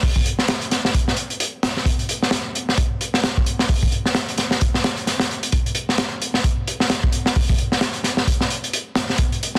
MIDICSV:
0, 0, Header, 1, 2, 480
1, 0, Start_track
1, 0, Tempo, 458015
1, 31, Time_signature, 4, 2, 24, 8
1, 10046, End_track
2, 0, Start_track
2, 0, Title_t, "Drums"
2, 30, Note_on_c, 9, 36, 119
2, 32, Note_on_c, 9, 46, 88
2, 135, Note_off_c, 9, 36, 0
2, 137, Note_off_c, 9, 46, 0
2, 167, Note_on_c, 9, 36, 93
2, 270, Note_on_c, 9, 42, 70
2, 271, Note_off_c, 9, 36, 0
2, 375, Note_off_c, 9, 42, 0
2, 405, Note_on_c, 9, 38, 44
2, 505, Note_on_c, 9, 42, 94
2, 509, Note_off_c, 9, 38, 0
2, 509, Note_on_c, 9, 38, 117
2, 610, Note_off_c, 9, 42, 0
2, 614, Note_off_c, 9, 38, 0
2, 646, Note_on_c, 9, 42, 47
2, 748, Note_off_c, 9, 42, 0
2, 748, Note_on_c, 9, 42, 63
2, 750, Note_on_c, 9, 38, 44
2, 853, Note_off_c, 9, 42, 0
2, 855, Note_off_c, 9, 38, 0
2, 889, Note_on_c, 9, 38, 59
2, 989, Note_on_c, 9, 36, 107
2, 991, Note_on_c, 9, 42, 95
2, 994, Note_off_c, 9, 38, 0
2, 1094, Note_off_c, 9, 36, 0
2, 1096, Note_off_c, 9, 42, 0
2, 1129, Note_on_c, 9, 38, 47
2, 1222, Note_on_c, 9, 42, 69
2, 1234, Note_off_c, 9, 38, 0
2, 1327, Note_off_c, 9, 42, 0
2, 1364, Note_on_c, 9, 42, 41
2, 1468, Note_off_c, 9, 42, 0
2, 1468, Note_on_c, 9, 42, 95
2, 1573, Note_off_c, 9, 42, 0
2, 1708, Note_on_c, 9, 38, 117
2, 1712, Note_on_c, 9, 42, 66
2, 1813, Note_off_c, 9, 38, 0
2, 1817, Note_off_c, 9, 42, 0
2, 1852, Note_on_c, 9, 38, 39
2, 1944, Note_on_c, 9, 36, 122
2, 1953, Note_on_c, 9, 42, 91
2, 1957, Note_off_c, 9, 38, 0
2, 2049, Note_off_c, 9, 36, 0
2, 2058, Note_off_c, 9, 42, 0
2, 2087, Note_on_c, 9, 42, 41
2, 2190, Note_off_c, 9, 42, 0
2, 2190, Note_on_c, 9, 42, 76
2, 2295, Note_off_c, 9, 42, 0
2, 2332, Note_on_c, 9, 38, 45
2, 2421, Note_off_c, 9, 38, 0
2, 2421, Note_on_c, 9, 38, 110
2, 2438, Note_on_c, 9, 42, 98
2, 2525, Note_off_c, 9, 38, 0
2, 2543, Note_off_c, 9, 42, 0
2, 2675, Note_on_c, 9, 42, 62
2, 2780, Note_off_c, 9, 42, 0
2, 2816, Note_on_c, 9, 38, 42
2, 2908, Note_on_c, 9, 42, 93
2, 2910, Note_on_c, 9, 36, 113
2, 2921, Note_off_c, 9, 38, 0
2, 3013, Note_off_c, 9, 42, 0
2, 3015, Note_off_c, 9, 36, 0
2, 3152, Note_on_c, 9, 42, 75
2, 3257, Note_off_c, 9, 42, 0
2, 3289, Note_on_c, 9, 38, 53
2, 3390, Note_on_c, 9, 42, 81
2, 3391, Note_off_c, 9, 38, 0
2, 3391, Note_on_c, 9, 38, 123
2, 3495, Note_off_c, 9, 42, 0
2, 3496, Note_off_c, 9, 38, 0
2, 3534, Note_on_c, 9, 36, 91
2, 3629, Note_on_c, 9, 42, 66
2, 3639, Note_off_c, 9, 36, 0
2, 3734, Note_off_c, 9, 42, 0
2, 3765, Note_on_c, 9, 38, 56
2, 3868, Note_on_c, 9, 36, 114
2, 3868, Note_on_c, 9, 46, 80
2, 3870, Note_off_c, 9, 38, 0
2, 3973, Note_off_c, 9, 36, 0
2, 3973, Note_off_c, 9, 46, 0
2, 4011, Note_on_c, 9, 36, 90
2, 4109, Note_on_c, 9, 42, 67
2, 4115, Note_off_c, 9, 36, 0
2, 4214, Note_off_c, 9, 42, 0
2, 4250, Note_on_c, 9, 38, 37
2, 4345, Note_off_c, 9, 38, 0
2, 4345, Note_on_c, 9, 38, 109
2, 4348, Note_on_c, 9, 42, 90
2, 4450, Note_off_c, 9, 38, 0
2, 4453, Note_off_c, 9, 42, 0
2, 4492, Note_on_c, 9, 42, 46
2, 4585, Note_off_c, 9, 42, 0
2, 4585, Note_on_c, 9, 42, 64
2, 4593, Note_on_c, 9, 38, 43
2, 4690, Note_off_c, 9, 42, 0
2, 4698, Note_off_c, 9, 38, 0
2, 4724, Note_on_c, 9, 38, 59
2, 4829, Note_off_c, 9, 38, 0
2, 4833, Note_on_c, 9, 42, 84
2, 4837, Note_on_c, 9, 36, 115
2, 4937, Note_off_c, 9, 42, 0
2, 4942, Note_off_c, 9, 36, 0
2, 4971, Note_on_c, 9, 38, 46
2, 5071, Note_on_c, 9, 42, 76
2, 5075, Note_off_c, 9, 38, 0
2, 5075, Note_on_c, 9, 38, 114
2, 5176, Note_off_c, 9, 42, 0
2, 5180, Note_off_c, 9, 38, 0
2, 5210, Note_on_c, 9, 42, 37
2, 5314, Note_on_c, 9, 38, 40
2, 5315, Note_off_c, 9, 42, 0
2, 5317, Note_on_c, 9, 42, 68
2, 5419, Note_off_c, 9, 38, 0
2, 5421, Note_off_c, 9, 42, 0
2, 5444, Note_on_c, 9, 38, 98
2, 5458, Note_on_c, 9, 42, 77
2, 5549, Note_off_c, 9, 38, 0
2, 5563, Note_off_c, 9, 42, 0
2, 5564, Note_on_c, 9, 42, 39
2, 5668, Note_off_c, 9, 42, 0
2, 5690, Note_on_c, 9, 42, 62
2, 5788, Note_off_c, 9, 42, 0
2, 5788, Note_on_c, 9, 42, 88
2, 5792, Note_on_c, 9, 36, 118
2, 5893, Note_off_c, 9, 42, 0
2, 5897, Note_off_c, 9, 36, 0
2, 5934, Note_on_c, 9, 42, 44
2, 6023, Note_off_c, 9, 42, 0
2, 6023, Note_on_c, 9, 42, 72
2, 6127, Note_off_c, 9, 42, 0
2, 6172, Note_on_c, 9, 38, 41
2, 6266, Note_on_c, 9, 42, 92
2, 6269, Note_off_c, 9, 38, 0
2, 6269, Note_on_c, 9, 38, 113
2, 6371, Note_off_c, 9, 42, 0
2, 6374, Note_off_c, 9, 38, 0
2, 6515, Note_on_c, 9, 42, 67
2, 6619, Note_off_c, 9, 42, 0
2, 6644, Note_on_c, 9, 38, 43
2, 6749, Note_off_c, 9, 38, 0
2, 6750, Note_on_c, 9, 36, 108
2, 6751, Note_on_c, 9, 42, 80
2, 6855, Note_off_c, 9, 36, 0
2, 6856, Note_off_c, 9, 42, 0
2, 6995, Note_on_c, 9, 42, 73
2, 7100, Note_off_c, 9, 42, 0
2, 7129, Note_on_c, 9, 38, 53
2, 7228, Note_off_c, 9, 38, 0
2, 7228, Note_on_c, 9, 38, 115
2, 7228, Note_on_c, 9, 42, 98
2, 7333, Note_off_c, 9, 38, 0
2, 7333, Note_off_c, 9, 42, 0
2, 7371, Note_on_c, 9, 36, 100
2, 7466, Note_on_c, 9, 42, 70
2, 7475, Note_off_c, 9, 36, 0
2, 7571, Note_off_c, 9, 42, 0
2, 7606, Note_on_c, 9, 38, 58
2, 7711, Note_off_c, 9, 38, 0
2, 7711, Note_on_c, 9, 46, 74
2, 7713, Note_on_c, 9, 36, 113
2, 7816, Note_off_c, 9, 46, 0
2, 7818, Note_off_c, 9, 36, 0
2, 7854, Note_on_c, 9, 36, 104
2, 7948, Note_on_c, 9, 42, 66
2, 7959, Note_off_c, 9, 36, 0
2, 8053, Note_off_c, 9, 42, 0
2, 8089, Note_on_c, 9, 38, 42
2, 8185, Note_off_c, 9, 38, 0
2, 8185, Note_on_c, 9, 38, 114
2, 8187, Note_on_c, 9, 42, 85
2, 8290, Note_off_c, 9, 38, 0
2, 8292, Note_off_c, 9, 42, 0
2, 8318, Note_on_c, 9, 42, 43
2, 8423, Note_off_c, 9, 42, 0
2, 8424, Note_on_c, 9, 38, 39
2, 8430, Note_on_c, 9, 42, 70
2, 8529, Note_off_c, 9, 38, 0
2, 8534, Note_off_c, 9, 42, 0
2, 8563, Note_on_c, 9, 38, 58
2, 8668, Note_off_c, 9, 38, 0
2, 8669, Note_on_c, 9, 36, 106
2, 8674, Note_on_c, 9, 42, 92
2, 8774, Note_off_c, 9, 36, 0
2, 8778, Note_off_c, 9, 42, 0
2, 8809, Note_on_c, 9, 38, 51
2, 8911, Note_on_c, 9, 42, 68
2, 8913, Note_off_c, 9, 38, 0
2, 9016, Note_off_c, 9, 42, 0
2, 9052, Note_on_c, 9, 42, 43
2, 9153, Note_off_c, 9, 42, 0
2, 9153, Note_on_c, 9, 42, 84
2, 9258, Note_off_c, 9, 42, 0
2, 9384, Note_on_c, 9, 38, 118
2, 9392, Note_on_c, 9, 42, 75
2, 9489, Note_off_c, 9, 38, 0
2, 9497, Note_off_c, 9, 42, 0
2, 9531, Note_on_c, 9, 38, 46
2, 9620, Note_on_c, 9, 42, 93
2, 9626, Note_on_c, 9, 36, 114
2, 9636, Note_off_c, 9, 38, 0
2, 9725, Note_off_c, 9, 42, 0
2, 9731, Note_off_c, 9, 36, 0
2, 9771, Note_on_c, 9, 42, 45
2, 9876, Note_off_c, 9, 42, 0
2, 9881, Note_on_c, 9, 42, 68
2, 9986, Note_off_c, 9, 42, 0
2, 10011, Note_on_c, 9, 38, 44
2, 10046, Note_off_c, 9, 38, 0
2, 10046, End_track
0, 0, End_of_file